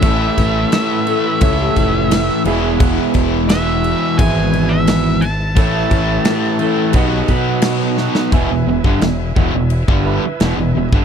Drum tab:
CC |x-x-x-x-x-x-x-x-|x-x-x-x-x-x-x-x-|x-x-x-x-x-x-x---|x---x---x---x---|
SD |--o-o-------oo--|----o-------o---|----o-------oooo|----o-------o---|
BD |o-o-----o-o-----|o-o-----o-------|o-o-----o-o-----|o--o--o--o-----o|